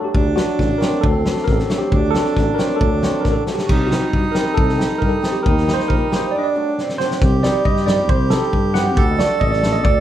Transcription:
0.00 0.20 F#3 medium
0.04 0.38 G4 medium
0.14 0.41 D2 medium
0.14 1.06 D4 loud
0.14 kick medium
0.35 0.79 F#3 medium
0.35 0.47 A3 soft
0.35 0.48 D4 medium
0.35 0.82 F#4 medium
0.35 snare medium
0.59 0.73 A1 medium
0.59 kick medium
0.59 snare soft
0.78 1.24 F#3 medium
0.78 0.92 A3 medium
0.78 0.92 C4 medium
0.78 1.03 A#4 medium
0.78 snare medium
1.01 1.30 D2 loud
1.01 1.96 C4 medium
1.01 1.48 A4 medium
1.01 kick medium
1.26 1.68 F#3 medium
1.26 1.37 A3 soft
1.26 1.37 D4 medium
1.26 snare medium
1.37 snare soft
1.44 1.61 A1 loud
1.44 1.58 A#4 medium
1.44 kick medium
1.44 snare soft
1.54 1.80 A4 medium
1.59 snare soft
1.70 2.13 F#3 medium
1.70 1.81 A3 medium
1.70 1.81 D4 medium
1.70 snare medium
1.78 2.14 G4 medium
1.92 2.19 D2 loud
1.92 3.44 D4 loud
1.92 kick medium
2.11 2.57 F#3 medium
2.11 2.58 A4 medium
2.11 snare medium
2.15 2.26 A3 medium
2.15 2.26 C4 medium
2.25 snare soft
2.36 2.49 A1 loud
2.36 kick medium
2.36 snare soft
2.55 3.01 F#3 medium
2.55 2.70 A3 medium
2.55 2.70 C4 medium
2.55 2.77 A#4 medium
2.59 snare medium
2.76 3.24 A4 medium
2.81 3.08 D2 medium
2.81 kick medium
3.03 3.45 F#3 medium
3.03 3.14 A3 medium
3.03 3.14 C4 medium
3.03 snare medium
3.21 3.33 A#4 medium
3.21 snare soft
3.25 3.38 A1 medium
3.25 kick medium
3.32 3.57 A4 medium
3.46 3.74 F#3 medium
3.46 3.58 A3 medium
3.46 3.58 D4 medium
3.46 snare medium
3.54 3.90 G4 medium
3.58 snare medium
3.64 3.70 F#4 medium
3.69 3.96 C2 medium
3.69 5.45 D#4 loud
3.69 kick medium
3.69 crash medium
3.87 4.33 G3 medium
3.87 4.35 F#4 medium
3.91 4.02 C4 soft
3.91 4.02 D#4 medium
3.91 snare medium
4.13 4.27 G2 medium
4.13 kick medium
4.31 4.77 G3 medium
4.31 4.46 C4 medium
4.31 4.46 D#4 medium
4.31 4.56 A#4 medium
4.31 snare medium
4.54 4.84 C2 medium
4.54 5.01 A4 medium
4.54 kick medium
4.69 snare soft
4.78 5.21 G3 medium
4.78 4.90 C4 medium
4.78 4.90 D#4 medium
4.78 snare medium
4.98 5.15 G2 medium
4.98 5.11 A#4 medium
4.98 kick medium
5.09 5.31 A4 medium
5.22 5.51 G3 medium
5.22 5.35 C4 medium
5.22 5.34 D#4 medium
5.22 snare medium
5.33 5.44 G4 medium
5.43 5.72 D#2 medium
5.43 6.37 D#4 loud
5.43 5.75 A#4 medium
5.43 kick medium
5.58 snare soft
5.67 6.11 G3 medium
5.67 5.79 A#3 medium
5.67 5.79 D#4 medium
5.67 snare medium
5.74 5.89 C5 loud
5.80 snare soft
5.88 6.03 A#1 medium
5.88 6.19 A#4 loud
5.88 kick medium
6.12 6.39 G3 medium
6.12 6.23 A#3 medium
6.12 6.23 D#4 medium
6.12 snare medium
6.16 6.31 C5 medium
6.31 6.80 D4 medium
6.31 6.39 D5 medium
6.39 6.47 D#5 medium
6.43 6.94 D5 medium
6.55 6.98 F#3 medium
6.55 6.67 A3 medium
6.55 6.67 D4 medium
6.78 7.02 C4 medium
6.78 snare soft
6.89 snare soft
6.98 7.27 F#3 medium
6.98 7.11 A3 medium
6.98 7.11 C4 medium
6.98 7.21 D4 medium
6.98 7.44 C5 loud
6.98 snare medium
7.11 snare medium
7.21 7.48 C2 loud
7.21 9.03 G4 loud
7.21 kick medium
7.21 snare soft
7.43 7.86 G3 medium
7.43 7.55 C4 medium
7.43 7.55 D#4 medium
7.43 7.66 D5 medium
7.43 snare medium
7.65 8.10 G2 medium
7.65 7.88 D#5 medium
7.65 kick medium
7.76 snare soft
7.86 8.31 G3 medium
7.86 7.99 C4 medium
7.86 7.99 D#4 medium
7.86 8.07 D5 medium
7.86 snare medium
8.09 8.35 C2 medium
8.09 8.30 C5 loud
8.09 kick medium
8.30 8.73 G3 medium
8.30 8.43 C4 medium
8.30 8.43 D#4 medium
8.30 8.76 A4 medium
8.30 snare medium
8.53 8.99 G2 medium
8.53 kick medium
8.74 9.02 G3 medium
8.74 8.86 C4 medium
8.74 8.86 D#4 medium
8.74 9.14 F#5 loud
8.74 snare medium
8.97 9.23 D2 loud
8.97 10.00 A4 loud
8.97 kick loud
9.11 9.18 D#5 medium
9.19 9.30 A3 medium
9.19 9.30 D4 medium
9.19 9.30 F#4 medium
9.19 9.42 D5 loud
9.19 snare medium
9.40 9.86 A1 loud
9.40 9.51 D#5 medium
9.40 kick medium
9.52 9.74 D5 medium
9.52 snare soft
9.62 9.73 A3 medium
9.62 9.74 D4 medium
9.62 9.74 A4 medium
9.62 snare medium
9.73 9.85 D#5 medium
9.84 10.00 D2 loud
9.84 10.00 D5 loud
9.84 kick loud

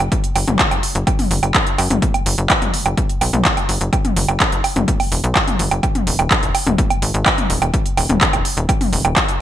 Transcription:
0.12 kick loud
0.12 closed hi-hat medium
0.24 closed hi-hat soft
0.36 0.46 F#1 loud
0.36 open hi-hat loud
0.36 low woodblock medium
0.48 0.58 F#1 medium
0.48 closed hi-hat soft
0.48 mid tom medium
0.59 kick loud
0.59 clap loud
0.59 closed hi-hat medium
0.71 0.81 F#1 medium
0.71 closed hi-hat soft
0.71 low woodblock soft
0.83 open hi-hat loud
0.95 1.05 F#1 medium
0.95 closed hi-hat soft
1.07 kick loud
1.07 closed hi-hat medium
1.07 low woodblock soft
1.19 open hi-hat medium
1.19 mid tom medium
1.31 1.41 F#1 medium
1.31 open hi-hat loud
1.43 1.53 F#1 medium
1.43 closed hi-hat soft
1.43 low woodblock medium
1.55 kick loud
1.55 clap loud
1.55 closed hi-hat medium
1.67 closed hi-hat soft
1.78 1.89 F#2 loud
1.78 open hi-hat loud
1.78 low woodblock soft
1.90 2.00 F#1 medium
1.90 closed hi-hat medium
1.90 mid tom medium
2.02 kick loud
2.02 closed hi-hat medium
2.14 closed hi-hat soft
2.14 low woodblock medium
2.26 2.36 F#1 loud
2.26 open hi-hat loud
2.38 2.48 F#1 medium
2.38 closed hi-hat soft
2.50 kick loud
2.50 clap loud
2.50 closed hi-hat medium
2.50 low woodblock medium
2.62 2.72 F#1 medium
2.62 closed hi-hat soft
2.62 mid tom medium
2.74 open hi-hat loud
2.86 2.96 F#1 medium
2.86 closed hi-hat soft
2.86 low woodblock medium
2.97 kick loud
2.97 closed hi-hat medium
3.09 closed hi-hat soft
3.21 3.31 B1 loud
3.21 open hi-hat loud
3.21 low woodblock medium
3.33 3.43 B1 medium
3.33 closed hi-hat soft
3.33 mid tom medium
3.45 kick loud
3.45 clap loud
3.45 closed hi-hat medium
3.57 closed hi-hat soft
3.57 low woodblock medium
3.69 3.79 F#1 loud
3.69 open hi-hat loud
3.81 3.91 F#1 medium
3.81 closed hi-hat medium
3.93 kick loud
3.93 closed hi-hat medium
3.93 low woodblock medium
4.05 closed hi-hat soft
4.05 mid tom loud
4.17 4.27 F#1 loud
4.17 open hi-hat loud
4.29 4.39 F#1 medium
4.29 closed hi-hat soft
4.29 low woodblock medium
4.40 kick loud
4.40 clap loud
4.40 closed hi-hat medium
4.52 4.62 F#1 medium
4.52 closed hi-hat soft
4.64 open hi-hat loud
4.64 low woodblock medium
4.76 4.86 F#1 medium
4.76 closed hi-hat soft
4.76 mid tom medium
4.88 kick loud
4.88 closed hi-hat medium
5.00 open hi-hat medium
5.00 low woodblock medium
5.12 5.22 E1 medium
5.12 open hi-hat loud
5.24 5.34 B1 medium
5.24 closed hi-hat soft
5.36 kick loud
5.36 clap loud
5.36 closed hi-hat medium
5.36 low woodblock medium
5.48 closed hi-hat soft
5.48 mid tom medium
5.59 5.70 F#1 loud
5.59 open hi-hat loud
5.71 5.81 F#1 medium
5.71 closed hi-hat medium
5.71 low woodblock medium
5.83 kick loud
5.83 closed hi-hat medium
5.83 low woodblock medium
5.95 closed hi-hat soft
5.95 mid tom loud
6.07 6.17 D#1 loud
6.07 open hi-hat loud
6.19 6.29 D#1 medium
6.19 closed hi-hat soft
6.19 low woodblock medium
6.31 kick loud
6.31 clap loud
6.31 closed hi-hat medium
6.43 6.53 D#1 medium
6.43 closed hi-hat soft
6.55 open hi-hat loud
6.55 low woodblock medium
6.67 6.77 D#1 medium
6.67 closed hi-hat soft
6.67 mid tom loud
6.78 kick loud
6.78 closed hi-hat medium
6.90 closed hi-hat soft
6.90 low woodblock medium
7.02 7.12 G#1 medium
7.02 open hi-hat loud
7.14 7.24 G#1 medium
7.14 closed hi-hat soft
7.26 kick loud
7.26 clap loud
7.26 closed hi-hat medium
7.26 low woodblock medium
7.38 closed hi-hat soft
7.38 mid tom medium
7.50 7.60 D#1 loud
7.50 open hi-hat loud
7.62 7.72 D#1 medium
7.62 closed hi-hat soft
7.62 low woodblock medium
7.74 kick loud
7.74 closed hi-hat medium
7.86 closed hi-hat soft
7.97 8.08 D#1 loud
7.97 open hi-hat loud
7.97 low woodblock medium
8.09 8.19 D#1 medium
8.09 closed hi-hat soft
8.09 mid tom loud
8.21 kick loud
8.21 clap loud
8.21 closed hi-hat medium
8.33 8.43 D#1 medium
8.33 closed hi-hat soft
8.33 low woodblock medium
8.45 open hi-hat loud
8.57 8.67 D#1 medium
8.57 closed hi-hat soft
8.69 kick loud
8.69 closed hi-hat medium
8.69 low woodblock medium
8.81 open hi-hat medium
8.81 mid tom loud
8.93 9.03 D#1 medium
8.93 open hi-hat loud
9.05 9.15 D#1 medium
9.05 closed hi-hat soft
9.05 low woodblock medium
9.16 kick loud
9.16 clap loud
9.16 closed hi-hat medium
9.29 closed hi-hat soft

